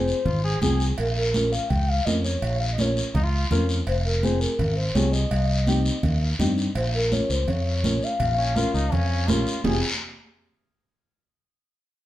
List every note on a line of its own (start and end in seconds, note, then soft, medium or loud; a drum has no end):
0.00 0.11 F1 medium
0.00 0.15 C4 medium
0.00 0.15 F4 medium
0.00 0.15 G#4 medium
0.00 0.59 C5 medium
0.08 short guiro medium
0.25 0.54 G#1 loud
0.25 0.42 F4 medium
0.25 high conga soft
0.25 low conga medium
0.25 long guiro medium
0.44 0.61 G#4 loud
0.62 0.91 C2 medium
0.62 0.87 C4 medium
0.62 0.87 F4 medium
0.62 0.87 G#4 medium
0.62 0.88 G#4 medium
0.62 high conga medium
0.62 low conga medium
0.62 short guiro medium
0.80 short guiro medium
0.98 1.56 A#1 medium
0.98 1.07 A#4 medium
0.98 cowbell loud
0.98 high conga soft
0.98 long guiro medium
1.17 1.33 A#4 loud
1.34 1.60 C#4 medium
1.34 1.60 F4 medium
1.34 1.51 A#4 medium
1.34 1.60 A#4 medium
1.34 high conga medium
1.34 short guiro medium
1.52 1.69 F5 loud
1.52 short guiro medium
1.70 1.99 C#2 loud
1.70 1.90 G5 loud
1.70 cowbell medium
1.70 high conga soft
1.70 low conga medium
1.70 long guiro medium
1.88 2.05 F5 loud
2.05 2.35 F2 medium
2.05 2.32 C#4 medium
2.05 2.32 F4 medium
2.05 2.32 A#4 medium
2.05 2.14 D#5 loud
2.05 high conga medium
2.05 short guiro medium
2.24 2.58 C#5 loud
2.24 short guiro medium
2.42 3.00 A#1 medium
2.42 cowbell loud
2.42 high conga soft
2.42 long guiro medium
2.60 2.65 F5 loud
2.73 2.81 D#5 medium
2.78 3.04 C#4 medium
2.78 3.04 F4 medium
2.78 3.04 A#4 medium
2.78 3.15 C#5 medium
2.78 high conga medium
2.78 short guiro medium
2.97 short guiro medium
3.14 3.44 C#2 loud
3.14 3.25 D#4 medium
3.14 cowbell medium
3.14 high conga soft
3.14 low conga medium
3.14 long guiro medium
3.24 3.50 F4 loud
3.51 3.80 F2 medium
3.51 3.76 C#4 medium
3.51 3.76 F4 medium
3.51 3.77 A#4 loud
3.51 high conga medium
3.51 low conga medium
3.51 short guiro medium
3.69 short guiro medium
3.87 4.45 F1 loud
3.87 3.95 C5 medium
3.87 cowbell loud
3.87 high conga soft
3.87 long guiro medium
4.05 4.25 A#4 medium
4.23 4.48 C4 medium
4.23 4.48 F4 medium
4.23 4.49 G#4 medium
4.23 4.41 C5 loud
4.23 high conga medium
4.23 short guiro medium
4.40 4.76 A#4 medium
4.40 short guiro medium
4.59 4.88 G#1 loud
4.59 cowbell medium
4.59 high conga soft
4.59 low conga medium
4.59 long guiro medium
4.77 4.94 C5 loud
4.94 5.24 C2 loud
4.94 5.20 C4 medium
4.94 5.21 F4 medium
4.94 5.21 G#4 medium
4.94 5.12 C#5 loud
4.94 high conga medium
4.94 low timbale medium
4.94 short guiro medium
5.12 6.17 D#5 loud
5.12 short guiro medium
5.31 5.89 C2 loud
5.31 cowbell loud
5.31 high conga soft
5.31 long guiro medium
5.67 5.93 C4 medium
5.67 5.93 D#4 medium
5.67 5.93 G4 loud
5.67 high conga medium
5.67 short guiro medium
5.86 short guiro medium
6.03 6.32 D#2 loud
6.03 cowbell medium
6.03 high conga soft
6.03 low conga medium
6.03 long guiro medium
6.39 6.68 G2 medium
6.39 6.65 C4 medium
6.39 6.65 D#4 medium
6.39 6.65 G4 medium
6.39 high conga medium
6.39 low conga medium
6.39 short guiro medium
6.58 short guiro medium
6.75 7.19 A#1 medium
6.75 6.84 C5 medium
6.75 cowbell medium
6.75 high conga soft
6.75 long guiro medium
6.95 7.11 A#4 medium
7.11 7.37 C#4 medium
7.11 7.37 F4 medium
7.11 7.37 A#4 medium
7.11 7.29 C#5 medium
7.11 high conga medium
7.11 short guiro medium
7.29 7.44 C#2 medium
7.29 7.50 C5 medium
7.29 short guiro medium
7.47 7.85 F2 loud
7.47 8.05 C#5 loud
7.47 cowbell medium
7.47 high conga soft
7.47 low conga medium
7.47 long guiro medium
7.83 7.98 A#1 medium
7.83 8.09 C#4 medium
7.83 8.09 F4 medium
7.83 8.09 A#4 medium
7.83 high conga medium
7.83 short guiro medium
8.03 9.29 F5 loud
8.03 short guiro medium
8.20 8.63 A#1 loud
8.20 cowbell loud
8.20 high conga soft
8.20 low conga medium
8.20 long guiro medium
8.38 8.57 C#4 medium
8.56 8.81 C#4 medium
8.56 8.74 F4 loud
8.56 8.82 F4 medium
8.56 8.82 A#4 loud
8.56 high conga medium
8.56 short guiro medium
8.74 8.88 C#2 medium
8.74 8.94 D#4 medium
8.74 short guiro medium
8.92 9.30 F2 loud
8.92 9.29 C#4 medium
8.92 cowbell medium
8.92 high conga soft
8.92 low conga medium
8.92 long guiro medium
9.28 9.43 A#1 medium
9.28 9.53 C#4 medium
9.28 9.64 F4 medium
9.28 9.54 F4 medium
9.28 9.54 A#4 loud
9.28 high conga medium
9.28 low timbale medium
9.28 short guiro medium
9.47 short guiro medium
9.64 9.81 F1 medium
9.64 9.81 C4 medium
9.64 9.81 F4 medium
9.64 9.81 G#4 medium
9.64 low conga loud
9.64 low timbale medium
9.64 long guiro loud